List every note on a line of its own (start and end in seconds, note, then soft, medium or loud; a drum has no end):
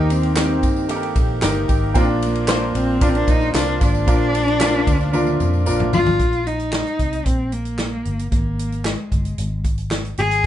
0.00 0.63 D#2 loud
0.00 0.35 D#3 medium
0.00 0.59 D#3 medium
0.00 0.37 A#3 medium
0.00 0.13 D#4 medium
0.00 0.36 D#4 medium
0.00 0.37 D#4 medium
0.00 0.36 G4 medium
0.00 0.37 G4 loud
0.00 0.37 A#4 loud
0.00 1.97 C5 medium
0.10 0.37 C4 medium
0.10 ride medium
0.10 tambourine medium
0.23 ride soft
0.36 0.88 D#3 medium
0.36 0.89 A#3 medium
0.36 0.87 C4 medium
0.36 0.86 D#4 medium
0.36 0.89 D#4 medium
0.36 0.86 G4 medium
0.36 0.90 G4 medium
0.36 0.86 A#4 medium
0.36 snare loud
0.36 clap medium
0.36 ride medium
0.36 tambourine medium
0.63 1.12 G2 medium
0.63 kick medium
0.63 ride medium
0.63 tambourine medium
0.76 tambourine soft
0.88 1.41 D#3 medium
0.88 1.42 A#3 medium
0.88 1.39 D#4 medium
0.88 1.43 D#4 medium
0.88 1.39 G4 medium
0.88 1.43 G4 loud
0.88 0.96 A4 medium
0.88 ride medium
0.88 tambourine medium
0.96 1.41 A#4 medium
1.03 ride soft
1.16 1.40 A#1 medium
1.16 kick medium
1.16 ride medium
1.16 tambourine soft
1.42 1.67 G1 loud
1.42 1.69 D#3 medium
1.42 1.69 A#3 medium
1.42 1.92 D#4 loud
1.42 1.69 D#4 medium
1.42 1.92 G4 medium
1.42 1.67 G4 medium
1.42 1.92 A#4 loud
1.42 snare loud
1.42 clap medium
1.42 ride medium
1.42 tambourine medium
1.68 1.94 G#1 medium
1.68 1.95 A#3 medium
1.68 1.96 D#4 medium
1.68 1.95 G4 medium
1.68 kick medium
1.68 ride medium
1.68 tambourine soft
1.94 2.71 A#1 loud
1.94 2.71 A#2 medium
1.94 2.48 A#2 medium
1.94 2.47 F3 loud
1.94 2.49 A#3 loud
1.94 2.01 C4 medium
1.94 2.49 D4 medium
1.94 2.45 F4 medium
1.94 2.51 F4 loud
1.94 2.45 A#4 loud
1.94 kick loud
1.94 ride medium
1.94 tambourine medium
2.01 2.46 D4 loud
2.22 2.78 A#3 loud
2.22 ride medium
2.22 tambourine soft
2.35 ride soft
2.47 3.01 F3 medium
2.47 3.02 A#3 medium
2.47 2.98 D4 medium
2.47 3.01 D4 medium
2.47 2.98 F4 medium
2.47 3.03 F4 medium
2.47 2.98 C5 medium
2.47 snare loud
2.47 clap medium
2.47 ride medium
2.47 tambourine medium
2.75 3.24 A#1 loud
2.75 3.04 C4 loud
2.75 ride medium
2.75 tambourine medium
3.01 3.54 A#2 medium
3.01 3.54 F3 medium
3.01 3.55 A#3 medium
3.01 3.51 D4 medium
3.01 3.55 D4 medium
3.01 3.11 D4 loud
3.01 3.51 F4 medium
3.01 3.56 F4 medium
3.01 3.51 A#4 medium
3.01 kick loud
3.01 ride medium
3.01 tambourine medium
3.09 3.18 C4 medium
3.15 3.32 D4 loud
3.15 ride soft
3.28 3.53 A#1 loud
3.28 3.55 D#4 loud
3.28 kick medium
3.28 ride medium
3.28 tambourine soft
3.41 tambourine soft
3.53 3.79 C2 medium
3.53 3.81 F3 medium
3.53 3.81 A#3 medium
3.53 4.04 D4 medium
3.53 3.80 D4 loud
3.53 3.81 D4 medium
3.53 4.04 F4 medium
3.53 3.79 F4 medium
3.53 4.04 A#4 medium
3.53 snare loud
3.53 clap medium
3.53 ride medium
3.53 tambourine medium
3.80 4.06 G#1 medium
3.80 4.07 A#3 medium
3.80 4.07 D4 medium
3.80 5.63 D4 loud
3.80 4.07 F4 medium
3.80 kick medium
3.80 snare soft
3.80 ride medium
3.80 tambourine soft
3.95 tambourine soft
4.07 4.83 A#1 loud
4.07 4.60 A#2 loud
4.07 4.83 A#2 medium
4.07 4.59 F3 medium
4.07 4.61 A#3 medium
4.07 4.57 D4 medium
4.07 4.61 D4 loud
4.07 4.57 F4 medium
4.07 4.62 F4 loud
4.07 4.57 A#4 medium
4.07 kick loud
4.07 ride medium
4.07 tambourine medium
4.35 ride medium
4.35 tambourine soft
4.48 ride soft
4.60 5.13 F3 medium
4.60 5.14 A#3 medium
4.60 5.10 D4 medium
4.60 5.14 D4 medium
4.60 5.11 F4 medium
4.60 5.15 F4 medium
4.60 5.11 A#4 loud
4.60 snare loud
4.60 clap medium
4.60 ride medium
4.60 tambourine medium
4.87 5.36 D2 medium
4.87 kick medium
4.87 ride medium
4.87 tambourine soft
5.01 tambourine soft
5.13 5.66 A#2 medium
5.13 5.66 F3 medium
5.13 5.67 A#3 medium
5.13 5.63 D4 medium
5.13 5.67 D4 medium
5.13 5.63 F4 medium
5.13 5.69 F4 loud
5.13 5.63 A#4 loud
5.13 high tom medium
5.13 tambourine medium
5.27 high tom medium
5.27 tambourine soft
5.40 5.68 F2 medium
5.40 mid tom medium
5.40 tambourine soft
5.54 tambourine soft
5.66 5.95 A#1 medium
5.66 5.93 F3 medium
5.66 5.93 A#3 medium
5.66 6.16 D4 medium
5.66 5.93 D4 medium
5.66 6.16 F4 medium
5.66 5.91 F4 medium
5.66 6.16 A#4 loud
5.66 tambourine loud
5.80 mid tom medium
5.93 6.18 G#1 medium
5.93 6.21 A#3 soft
5.93 6.20 D4 medium
5.93 6.19 F4 medium
5.93 6.48 F4 loud
5.93 floor tom loud
5.93 tambourine medium
6.06 floor tom loud
6.06 tambourine soft
6.19 6.83 A#1 medium
6.19 kick medium
6.19 closed hi-hat medium
6.33 closed hi-hat soft
6.47 7.28 D#4 loud
6.47 closed hi-hat medium
6.59 closed hi-hat soft
6.73 snare medium
6.73 clap medium
6.86 closed hi-hat soft
6.99 7.24 C2 medium
6.99 kick medium
6.99 closed hi-hat medium
7.13 closed hi-hat soft
7.26 8.02 A#1 medium
7.26 7.55 C4 medium
7.26 kick medium
7.26 closed hi-hat medium
7.52 8.32 A#3 medium
7.52 closed hi-hat medium
7.65 closed hi-hat soft
7.78 snare medium
7.78 clap medium
8.05 8.30 G1 medium
8.05 closed hi-hat medium
8.19 closed hi-hat medium
8.32 8.95 G#1 medium
8.32 8.88 A#3 medium
8.32 kick medium
8.32 closed hi-hat medium
8.59 closed hi-hat medium
8.72 closed hi-hat soft
8.85 9.65 G#3 medium
8.85 snare loud
8.85 clap medium
9.12 9.36 G1 medium
9.12 kick medium
9.12 closed hi-hat medium
9.25 closed hi-hat soft
9.38 10.14 G#1 medium
9.38 closed hi-hat medium
9.64 kick medium
9.64 closed hi-hat medium
9.78 closed hi-hat soft
9.91 snare medium
9.91 clap medium
10.05 closed hi-hat soft
10.17 10.43 G#1 medium
10.17 10.46 G#4 loud
10.17 closed hi-hat medium
10.31 closed hi-hat medium